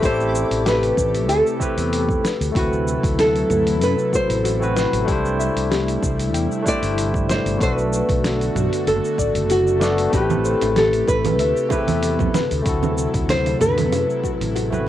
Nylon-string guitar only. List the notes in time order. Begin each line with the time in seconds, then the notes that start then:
0.05 C5
0.68 B4
1.29 A4
2.57 F#4
3.20 A4
3.83 B4
4.15 C5
6.68 D5
7.31 C5
7.63 C5
7.74 B4
8.88 A4
9.51 F#4
10.14 G4
10.77 A4
11.08 B4
13.30 C5
13.61 B4